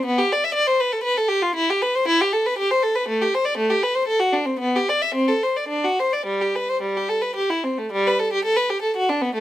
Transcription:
\new Staff \with { instrumentName = "Violin" } { \time 3/4 \key g \mixolydian \tempo 4 = 116 b16 g'16 d''16 e''16 d''16 c''16 b'16 a'16 b'16 a'16 g'16 f'16 | \key g \major e'16 g'16 b'16 c''16 e'16 g'16 a'16 b'16 g'16 c''16 a'16 b'16 | a16 g'16 c''16 d''16 a16 g'16 b'16 c''16 a'16 fis'16 d'16 c'16 | b16 g'16 d''16 e''16 c'16 a'16 c''16 d''16 d'16 fis'16 c''16 d''16 |
g16 g'16 b'16 c''16 g16 g'16 a'16 b'16 g'16 e'16 c'16 a16 | g16 b'16 a'16 g'16 a'16 b'16 g'16 a'16 fis'16 d'16 b16 a16 | }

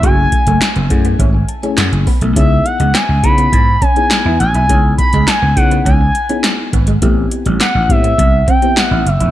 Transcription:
<<
  \new Staff \with { instrumentName = "Analog synth lead" } { \time 4/4 \key cis \minor \tempo 4 = 103 gis''4. r2 r8 | e''8 fis''8 gis''8 b''4 gis''4 gis''8~ | gis''8 b''8 gis''8 fis''8 gis''4. r8 | r4 fis''8 e''4 g''8 fis''8 e''8 | }
  \new Staff \with { instrumentName = "FM electric piano" } { \time 4/4 \key cis \minor << { r4. fis''8 e''16 gis''16 a''8 fis''16 gis''16 b''8 | r1 | r1 | r1 | } \\ { <a cis' e' gis'>4 r8 <a cis' e' gis'>8. r8 <a cis' e' gis'>8. r8 | <b dis' e' gis'>4 r8 <b dis' e' gis'>8. r8 <b dis' e' gis'>8. r8 | <b dis' e' gis'>4 r8 <b dis' e' gis'>8. r8 <b dis' e' gis'>8. r8 | <b c' e' g'>4 r8 <b c' e' g'>8. r8 <b c' e' g'>8. r8 | } >> }
  \new Staff \with { instrumentName = "Clean electric guitar" } { \time 4/4 \key cis \minor fis'16 r8 a16 r16 b16 r16 b16 cis'16 r8 cis'16 r8 b16 a16 | cis'16 r8 gis16 b16 r8 b16 r8 cis'16 cis'16 r16 e'16 r16 e'16 | cis'16 r8 gis16 r16 b16 r16 b16 cis'16 r8 cis'16 r8 b16 gis16 | a16 r8 g16 b16 r8 b16 r8 c'16 c'16 r16 e'16 r16 e'16 | }
  \new Staff \with { instrumentName = "Slap bass" } { \clef bass \time 4/4 \key cis \minor fis,,8 r16 fis,,16 r16 fis,,16 fis,8 gis,,8 r8 fis,16 fis,,16 r16 b,,16 | cis,8 r16 cis,16 r16 cis,16 cis8 gis,8 r8. e,16 a,,16 b,,16 | cis,8 r16 cis,16 r16 cis,16 cis8 cis,8 r4 gis,,8 | a,,8 r16 a,,16 r16 a,,16 a,8 c,8 r8. a,,16 fis,,16 e,,16 | }
  \new DrumStaff \with { instrumentName = "Drums" } \drummode { \time 4/4 <hh bd>8 <hh bd>16 hh16 <hc hh sn>16 hh16 <hh bd>16 hh16 <hh bd>8 hh16 hh16 <hc hh sn>16 hh16 <hho bd>16 hh16 | <hh bd>8 hh16 hh16 <hc hh sn>8 <hh bd>16 hh16 <hh bd>8 <hh bd>16 hh16 <hc hh sn>8 hh16 hh16 | <hh bd>8 <hh bd>16 hh16 <hc hh sn>8 <hh bd>16 hh16 <hh bd>8 hh16 hh16 <hc hh sn>8 <hh bd>16 hh16 | <hh bd>8 hh16 hh16 <hc hh sn>8 <hh bd>16 hh16 <hh bd>8 <hh bd>16 hh16 <hc hh sn>8 hh16 hh16 | }
>>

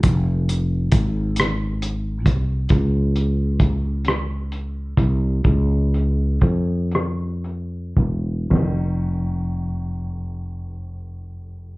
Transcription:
<<
  \new Staff \with { instrumentName = "Fretless electric bass" } { \clef bass \time 6/8 \key des \lydian \tempo 4. = 42 f,,4 aes,,4. c,8 | des,2~ des,8 c,8 | des,4 f,4. e,,8 | f,,2. | }
  \new DrumStaff \with { instrumentName = "Drums" } \drummode { \time 6/8 <hh bd>8 hh8 <hh bd>8 <hh ss>8 hh8 <hh bd>8 | <hh bd>8 hh8 <hh bd>8 <hh ss>8 hh8 <hh bd>8 | <hh bd>8 hh8 <hh bd>8 <hh ss>8 hh8 <hh bd>8 | <bd rb sn>4. r4. | }
>>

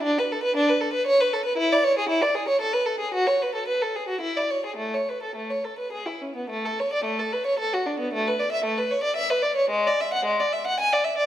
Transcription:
\new Staff \with { instrumentName = "Violin" } { \time 3/4 \key a \major \tempo 4 = 113 d'16 b'16 a'16 b'16 d'16 b'16 a'16 b'16 cis''16 b'16 a'16 b'16 | e'16 d''16 cis''16 gis'16 e'16 d''16 gis'16 cis''16 a'16 b'16 a'16 gis'16 | fis'16 cis''16 b'16 a'16 b'16 a'16 gis'16 fis'16 e'16 d''16 cis''16 gis'16 | a16 cis''16 b'16 a'16 a16 cis''16 a'16 b'16 gis'16 e'16 cis'16 b16 |
a16 a'16 cis''16 d''16 a16 a'16 b'16 cis''16 a'16 fis'16 d'16 b16 | a16 b'16 d''16 e''16 a16 b'16 cis''16 d''16 e''16 b'16 d''16 cis''16 | gis16 d''16 e''16 fis''16 gis16 d''16 e''16 fis''16 gis''16 d''16 e''16 d''16 | }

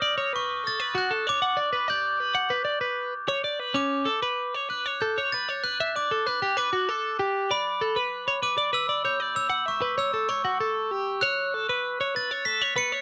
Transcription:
<<
  \new Staff \with { instrumentName = "Glockenspiel" } { \time 6/8 \key g \lydian \tempo 4. = 64 r8 cis'''8 a'''8 fis'''8 d'''4 | g'''2 r4 | d'''4. fis'''8 g'''8 a'''8 | fis'''8 d'''8 fis'''8 d'''4 r8 |
b''4. d'''8 e'''8 g'''8 | e'''8 cis'''8 e'''8 cis'''4 r8 | fis'''4. a'''8 b'''8 cis''''8 | }
  \new Staff \with { instrumentName = "Clean electric guitar" } { \time 6/8 \key g \lydian d''16 cis''16 b'8 a'16 b'16 fis'16 a'16 cis''16 fis''16 d''16 b'16 | d''8 b'16 fis''16 b'16 d''16 b'8 r16 cis''16 d''16 b'16 | cis'8 a'16 b'8 cis''16 b'16 cis''16 a'16 cis''16 b'16 cis''16 | b'16 e''16 d''16 a'16 b'16 g'16 b'16 fis'16 a'8 g'8 |
d''8 a'16 b'8 cis''16 b'16 d''16 b'16 d''16 cis''16 d''16 | cis''16 fis''16 e''16 b'16 cis''16 a'16 cis''16 fis'16 a'8 g'8 | cis''8 a'16 b'8 cis''16 b'16 cis''16 a'16 cis''16 b'16 cis''16 | }
>>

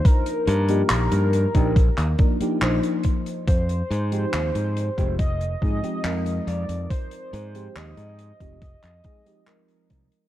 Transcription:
<<
  \new Staff \with { instrumentName = "Soft synth lead" } { \time 4/4 \key f \dorian \tempo 4 = 70 bes'4 bes'2 r4 | c''2 ees''4. d''8 | c''4 ees''4 ees''4. r8 | }
  \new Staff \with { instrumentName = "FM electric piano" } { \time 4/4 \key f \dorian <f bes d' ees' c''>8. <f bes d' ees' g'>4 <f bes d' ees' g'>16 r8 <f bes d' ees' bes'>16 <f bes d' ees' g'>16 <f bes d' ees' c''>4 | r8. <f aes c' ees' g'>4 <f aes c' ees' g'>16 r8 <f aes c' ees' aes'>16 <f aes c' ees' g'>16 <f aes c' ees' bes'>4~ | <f aes c' ees' bes'>8. <f aes c' ees' g'>4 <f aes c' ees' g'>16 r8 <f aes c' ees' aes'>16 <f aes c' ees' g'>16 <f aes c' ees' bes'>4 | }
  \new Staff \with { instrumentName = "Fingered electric bass" } { \clef bass \time 4/4 \key f \dorian r8 g,8 bes,,16 g,8 bes,,8 ees,16 r8 bes,,16 r8. | f,8 aes,8 ees,16 aes,8 f,,8. aes,16 r16 f,8 f,16 f,16 | r8 aes,8 ees,16 aes,8 f,,8 f,16 r4 c,16 r16 | }
  \new DrumStaff \with { instrumentName = "Drums" } \drummode { \time 4/4 <hh bd>16 hh16 hh16 hh16 <hc hh>16 hh16 hh16 <hh bd>16 <hh bd>16 <hc hh>16 <hh bd>16 hh16 <hc hh>16 hh16 <hh bd>16 hh16 | <hh bd>16 hh16 hh16 hh16 <hc hh>16 hh16 hh16 <hh bd>16 <hh bd>16 hh16 <hh bd>16 hh16 <hc hh>16 hh16 hh16 hh16 | <hh bd>16 hh16 hh16 hh16 <hc hh>16 hh16 hh16 <hh bd>16 <hh bd>16 <hc hh>16 <hh bd>16 hh16 <hc hh>16 hh16 <hh bd>16 hh16 | }
>>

